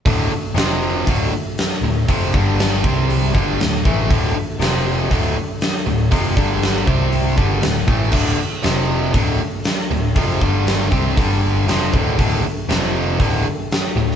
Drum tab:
CC |----------------|----------------|----------------|----------------|
HH |o---o---o---o---|o---o---o---o---|o---o---o---o---|o---o---o---o---|
SD |----o-------o---|----o-------o---|----o-------o---|----o-------o---|
BD |o-------o-------|o-o---o---o---o-|o-------o-------|o-o---o---o---o-|

CC |x---------------|----------------|----------------|
HH |----o---o---o---|o---o---o---o---|o---o---o---o---|
SD |----o-------o---|----o-------o---|----o-------o--o|
BD |o-------o-------|o-o---o-o-----o-|o-------o-------|